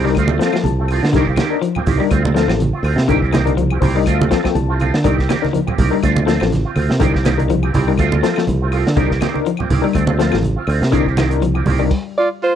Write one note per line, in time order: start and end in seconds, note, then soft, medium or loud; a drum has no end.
0.00 0.14 C2 medium
0.04 0.22 G3 medium
0.04 0.15 D4 medium
0.04 0.15 D#4 medium
0.04 0.16 A#4 loud
0.04 snare soft
0.15 0.38 D2 medium
0.15 0.30 F3 medium
0.15 0.31 A3 medium
0.15 0.30 C4 medium
0.15 0.30 F4 medium
0.15 kick medium
0.15 closed hi-hat medium
0.15 claves medium
0.28 0.41 C4 medium
0.28 0.41 F4 medium
0.28 high conga medium
0.32 0.40 A3 soft
0.39 0.49 F3 medium
0.39 0.56 F3 medium
0.39 0.56 A3 medium
0.39 0.65 C4 medium
0.39 0.57 C4 medium
0.39 0.65 F4 medium
0.39 0.57 F4 medium
0.39 0.65 A4 medium
0.39 0.62 F5 medium
0.39 snare medium
0.39 closed hi-hat soft
0.53 0.71 F3 medium
0.53 snare medium
0.53 claves medium
0.64 0.99 C2 medium
0.64 1.10 A5 medium
0.64 closed hi-hat medium
0.64 high conga medium
0.79 0.90 A3 soft
0.79 0.90 C4 medium
0.88 1.06 F3 medium
0.88 1.06 A3 medium
0.88 1.06 C4 medium
0.88 1.06 F4 medium
0.88 open hi-hat medium
0.88 claves medium
1.03 1.13 D3 medium
1.03 snare medium
1.12 1.36 C2 medium
1.12 1.30 D3 medium
1.12 1.28 D#3 medium
1.12 1.28 A#3 medium
1.12 1.27 C4 medium
1.12 1.27 D4 medium
1.12 1.27 D#4 medium
1.12 1.27 A#4 medium
1.12 kick medium
1.12 snare soft
1.12 closed hi-hat medium
1.12 low conga medium
1.16 1.27 G4 medium
1.27 1.37 A#3 soft
1.27 1.38 C4 medium
1.27 1.38 G4 medium
1.27 kick medium
1.36 1.55 D#3 medium
1.36 1.54 D#3 medium
1.36 1.54 A#3 medium
1.36 1.54 C4 medium
1.36 1.54 G4 medium
1.36 snare medium
1.36 closed hi-hat soft
1.36 high conga medium
1.36 claves medium
1.50 1.67 D4 medium
1.50 1.67 D#4 medium
1.50 1.67 A#4 medium
1.62 1.79 F3 medium
1.62 closed hi-hat medium
1.75 1.86 A#3 soft
1.75 1.86 C4 soft
1.75 1.87 G4 medium
1.75 low conga medium
1.75 claves medium
1.86 1.99 C2 medium
1.86 2.02 D#3 medium
1.86 2.02 A#3 medium
1.86 2.03 C4 medium
1.86 2.03 G4 medium
1.86 kick medium
1.86 open hi-hat medium
1.86 high conga medium
1.86 low conga medium
1.98 2.17 G3 medium
1.98 2.10 D4 medium
1.98 2.10 D#4 medium
1.98 2.10 A#4 medium
2.11 2.46 D2 medium
2.11 2.24 C4 medium
2.11 2.22 F4 medium
2.11 muted clean electric guitar stroke medium
2.11 kick medium
2.11 closed hi-hat medium
2.11 claves medium
2.24 2.34 C4 soft
2.24 2.35 F4 medium
2.24 high conga medium
2.35 2.44 F3 medium
2.35 2.51 A3 medium
2.35 2.61 C4 medium
2.35 2.51 C4 medium
2.35 2.61 F4 medium
2.35 2.51 F4 medium
2.35 2.61 A4 medium
2.35 snare medium
2.35 closed hi-hat medium
2.48 2.71 A1 medium
2.48 2.66 F3 medium
2.48 snare medium
2.48 claves medium
2.60 closed hi-hat medium
2.60 high conga medium
2.73 2.83 C4 soft
2.73 2.84 F4 medium
2.73 muted fingered electric bass stroke soft
2.83 2.95 D2 medium
2.83 3.00 A3 medium
2.83 3.00 C4 medium
2.83 3.00 F4 medium
2.83 open hi-hat medium
2.83 claves medium
2.96 3.07 C3 medium
2.96 snare medium
3.08 3.78 C2 medium
3.08 3.25 D3 medium
3.08 3.22 A#3 medium
3.08 3.21 C4 medium
3.08 3.22 D4 medium
3.08 3.23 D#4 medium
3.08 3.21 G4 medium
3.08 3.22 A#4 medium
3.08 muted clean electric guitar stroke medium
3.08 kick medium
3.08 closed hi-hat medium
3.08 low conga medium
3.22 3.32 A#3 medium
3.22 3.32 C4 medium
3.22 3.32 G4 soft
3.22 kick medium
3.32 3.49 D#3 medium
3.32 3.50 D#3 medium
3.32 3.49 A#3 medium
3.32 3.49 C4 medium
3.32 3.49 G4 medium
3.32 snare medium
3.32 closed hi-hat medium
3.32 high conga medium
3.32 claves medium
3.45 3.63 D4 medium
3.45 3.63 D#4 medium
3.45 3.62 A#4 medium
3.45 closed hi-hat medium
3.45 high conga medium
3.57 3.75 F3 medium
3.57 closed hi-hat medium
3.57 high conga medium
3.70 3.81 A#3 soft
3.70 3.81 C4 soft
3.70 3.82 G4 medium
3.70 claves medium
3.81 4.04 C2 medium
3.81 3.98 D#3 medium
3.81 3.98 A#3 medium
3.81 3.98 C4 medium
3.81 3.98 G4 medium
3.81 3.94 C5 medium
3.81 open hi-hat medium
3.81 high conga medium
3.81 low conga medium
3.95 4.13 G3 medium
3.95 4.06 D4 medium
3.95 4.06 D#4 medium
3.95 4.06 A#4 medium
3.95 4.06 D#5 medium
4.06 4.29 D2 medium
4.06 4.20 F3 medium
4.06 4.20 A3 medium
4.06 4.21 C4 medium
4.06 4.20 F4 medium
4.06 kick medium
4.06 closed hi-hat medium
4.06 claves medium
4.21 4.30 A3 soft
4.21 4.30 C4 medium
4.21 4.31 F4 medium
4.21 high conga medium
4.30 4.47 F3 medium
4.30 4.40 F3 medium
4.30 4.47 A3 medium
4.30 4.57 C4 medium
4.30 4.47 C4 medium
4.30 4.56 F4 medium
4.30 4.47 F4 medium
4.30 4.57 A4 medium
4.30 kick medium
4.30 snare medium
4.30 closed hi-hat medium
4.44 4.61 F3 medium
4.44 4.55 G5 medium
4.44 kick medium
4.44 snare medium
4.44 claves medium
4.55 4.90 C2 medium
4.55 5.01 A5 medium
4.55 closed hi-hat medium
4.55 high conga medium
4.69 4.80 A3 soft
4.69 4.80 C4 soft
4.69 4.80 F4 medium
4.80 4.96 F3 medium
4.80 4.96 A3 medium
4.80 4.96 C4 medium
4.80 4.97 F4 medium
4.80 closed hi-hat soft
4.80 high conga medium
4.80 claves medium
4.94 5.04 D3 medium
4.94 snare medium
5.04 5.27 C2 medium
5.04 5.22 D3 medium
5.04 5.18 D#3 medium
5.04 5.17 C4 medium
5.04 5.18 D4 medium
5.04 5.18 D#4 medium
5.04 5.16 G4 medium
5.04 5.19 A#4 medium
5.04 muted clean electric guitar stroke medium
5.04 kick medium
5.04 closed hi-hat medium
5.04 low conga medium
5.17 5.28 A#3 soft
5.17 5.28 C4 medium
5.17 5.29 G4 medium
5.17 kick medium
5.17 snare soft
5.29 5.46 D#3 medium
5.29 5.45 A#3 medium
5.29 5.45 C4 medium
5.29 5.45 G4 medium
5.29 muted clean electric guitar stroke medium
5.29 snare medium
5.29 closed hi-hat soft
5.29 high conga medium
5.29 claves medium
5.42 5.59 D4 medium
5.42 5.59 D#4 medium
5.42 5.59 A#4 medium
5.42 snare soft
5.42 high conga medium
5.53 5.71 F3 medium
5.53 closed hi-hat medium
5.53 high conga medium
5.67 5.78 A#3 soft
5.67 5.78 C4 medium
5.67 5.78 G4 medium
5.67 low conga medium
5.67 claves medium
5.78 5.91 C2 medium
5.78 5.94 D#3 medium
5.78 5.94 A#3 medium
5.78 5.95 C4 medium
5.78 5.95 G4 medium
5.78 kick medium
5.78 open hi-hat medium
5.78 high conga medium
5.78 low conga medium
5.91 6.10 G3 medium
5.91 6.02 D4 medium
5.91 6.02 D#4 medium
5.91 6.02 A#4 medium
6.03 6.38 D2 medium
6.03 6.16 A3 medium
6.03 6.15 C4 medium
6.03 6.14 F4 medium
6.03 kick medium
6.03 closed hi-hat medium
6.03 claves medium
6.15 6.26 C4 soft
6.15 6.26 F4 medium
6.15 high conga medium
6.26 6.37 F3 medium
6.26 6.43 A3 medium
6.26 6.52 C4 medium
6.26 6.43 C4 medium
6.26 6.53 F4 medium
6.26 6.43 F4 medium
6.26 6.52 A4 medium
6.26 snare medium
6.26 closed hi-hat medium
6.40 6.63 A1 medium
6.40 6.58 F3 medium
6.40 snare medium
6.40 claves medium
6.52 snare soft
6.52 closed hi-hat medium
6.52 high conga medium
6.65 6.75 C4 soft
6.65 6.76 F4 medium
6.65 muted fingered electric bass stroke soft
6.76 6.89 D2 medium
6.76 6.92 A3 medium
6.76 6.92 C4 medium
6.76 6.93 F4 medium
6.76 open hi-hat medium
6.76 high conga medium
6.76 claves medium
6.89 7.00 C3 medium
6.89 snare medium
7.00 7.70 C2 medium
7.00 7.18 D3 medium
7.00 7.14 D#3 medium
7.00 7.14 A#3 medium
7.00 7.13 C4 medium
7.00 7.14 D4 medium
7.00 7.14 D#4 medium
7.00 7.13 G4 medium
7.00 7.14 A#4 medium
7.00 kick medium
7.00 closed hi-hat medium
7.00 low conga medium
7.14 7.23 A#3 soft
7.14 7.24 C4 soft
7.14 7.25 G4 medium
7.14 kick medium
7.14 snare soft
7.24 7.40 D#3 medium
7.24 7.43 D#3 medium
7.24 7.41 A#3 medium
7.24 7.41 C4 medium
7.24 7.41 G4 medium
7.24 snare medium
7.24 closed hi-hat medium
7.24 high conga medium
7.24 claves medium
7.38 7.55 D4 medium
7.38 7.55 D#4 medium
7.38 7.55 A#4 medium
7.38 closed hi-hat medium
7.38 high conga medium
7.50 7.67 F3 medium
7.50 closed hi-hat medium
7.50 high conga medium
7.63 7.73 A#3 soft
7.63 7.73 C4 soft
7.63 7.73 G4 medium
7.63 claves medium
7.74 7.97 C2 medium
7.74 7.90 D#3 medium
7.74 7.90 A#3 medium
7.74 7.90 C4 medium
7.74 7.90 G4 medium
7.74 kick medium
7.74 open hi-hat medium
7.74 high conga medium
7.74 low conga medium
7.88 8.05 G3 medium
7.88 7.99 D4 medium
7.88 7.99 D#4 medium
7.88 7.99 A#4 medium
7.98 8.21 D2 medium
7.98 8.12 F3 medium
7.98 8.12 A3 medium
7.98 8.12 C4 medium
7.98 8.11 F4 medium
7.98 kick medium
7.98 closed hi-hat medium
7.98 claves medium
8.12 8.23 A3 soft
8.12 8.22 C4 soft
8.12 8.23 F4 medium
8.12 high conga medium
8.22 8.33 F3 medium
8.22 8.39 A3 medium
8.22 8.48 C4 medium
8.22 8.39 C4 medium
8.22 8.49 F4 medium
8.22 8.39 F4 medium
8.22 8.49 A4 medium
8.22 snare medium
8.22 closed hi-hat medium
8.36 8.54 F3 medium
8.36 snare medium
8.36 claves medium
8.47 8.83 C2 medium
8.47 closed hi-hat medium
8.47 high conga medium
8.61 8.71 A3 soft
8.61 8.71 C4 medium
8.61 8.72 F4 medium
8.72 8.88 F3 medium
8.72 8.88 A3 medium
8.72 8.88 C4 medium
8.72 8.88 F4 medium
8.72 open hi-hat medium
8.72 claves medium
8.87 8.96 D3 medium
8.87 snare medium
8.96 9.19 C2 medium
8.96 9.14 D3 medium
8.96 9.10 D#3 medium
8.96 9.10 A#3 medium
8.96 9.09 C4 medium
8.96 9.11 D4 medium
8.96 9.11 D#4 medium
8.96 9.08 G4 medium
8.96 9.11 A#4 medium
8.96 kick medium
8.96 closed hi-hat medium
8.96 low conga medium
9.10 9.20 A#3 soft
9.10 9.21 C4 soft
9.10 9.21 G4 medium
9.10 kick medium
9.10 snare soft
9.21 9.37 D#3 medium
9.21 9.39 D#3 medium
9.21 9.37 A#3 medium
9.21 9.37 C4 medium
9.21 9.37 G4 medium
9.21 snare medium
9.21 closed hi-hat soft
9.21 high conga medium
9.21 claves medium
9.34 9.51 D4 medium
9.34 9.51 D#4 medium
9.34 9.51 A#4 loud
9.34 high conga medium
9.46 9.63 F3 medium
9.46 closed hi-hat medium
9.57 9.70 A#3 soft
9.57 9.70 C4 soft
9.57 9.70 G4 medium
9.57 low conga medium
9.57 claves medium
9.70 9.83 C2 medium
9.70 9.86 D#3 medium
9.70 9.86 A#3 medium
9.70 9.86 C4 medium
9.70 9.87 G4 medium
9.70 kick medium
9.70 open hi-hat medium
9.70 high conga medium
9.70 low conga medium
9.82 10.01 G3 medium
9.82 9.94 D4 medium
9.82 9.94 D#4 medium
9.82 9.94 A#4 loud
9.93 10.30 D2 medium
9.93 10.08 A3 medium
9.93 10.08 C4 medium
9.93 muted clean electric guitar stroke medium
9.93 kick medium
9.93 closed hi-hat medium
9.93 claves medium
10.07 10.19 C4 soft
10.07 10.19 F4 medium
10.07 high conga medium
10.18 10.29 F3 medium
10.18 10.35 A3 medium
10.18 10.44 C4 medium
10.18 10.35 C4 medium
10.18 10.44 F4 medium
10.18 10.35 F4 medium
10.18 10.44 A4 medium
10.18 snare medium
10.18 closed hi-hat soft
10.32 10.55 A1 medium
10.32 10.50 F3 medium
10.32 snare medium
10.32 claves medium
10.43 closed hi-hat medium
10.43 high conga medium
10.56 10.67 C4 soft
10.56 10.67 F4 medium
10.56 muted fingered electric bass stroke soft
10.67 10.80 D2 medium
10.67 10.84 A3 medium
10.67 10.84 C4 medium
10.67 10.84 F4 medium
10.67 open hi-hat medium
10.67 claves medium
10.81 10.92 C3 medium
10.81 snare medium
10.91 11.62 C2 medium
10.91 11.10 D3 medium
10.91 11.06 D#3 medium
10.91 11.06 A#3 medium
10.91 11.06 C4 medium
10.91 11.06 D4 medium
10.91 11.06 D#4 medium
10.91 11.06 G4 medium
10.91 11.06 A#4 medium
10.91 kick medium
10.91 closed hi-hat medium
10.91 low conga medium
11.06 11.17 A#3 soft
11.06 11.17 C4 soft
11.06 11.17 G4 medium
11.06 kick medium
11.17 11.33 D#3 medium
11.17 11.35 D#3 medium
11.17 11.33 A#3 medium
11.17 11.33 C4 medium
11.17 11.34 G4 medium
11.17 snare medium
11.17 closed hi-hat medium
11.17 high conga medium
11.17 claves medium
11.30 11.46 D4 medium
11.30 11.46 D#4 medium
11.30 11.47 A#4 medium
11.30 closed hi-hat medium
11.42 11.59 F3 medium
11.42 closed hi-hat medium
11.42 high conga medium
11.54 11.66 A#3 soft
11.54 11.66 C4 soft
11.54 11.66 G4 medium
11.54 claves medium
11.66 11.89 C2 medium
11.66 11.82 D#3 medium
11.66 11.82 A#3 medium
11.66 11.83 C4 medium
11.66 11.83 G4 medium
11.66 open hi-hat medium
11.66 high conga medium
11.66 low conga medium
11.79 11.97 G3 medium
11.79 11.90 D4 medium
11.79 11.90 D#4 medium
11.79 11.90 A#4 medium
11.91 kick medium
11.91 crash medium
12.18 12.29 F4 medium
12.18 12.28 D5 medium
12.43 12.53 F4 medium
12.43 12.54 C5 medium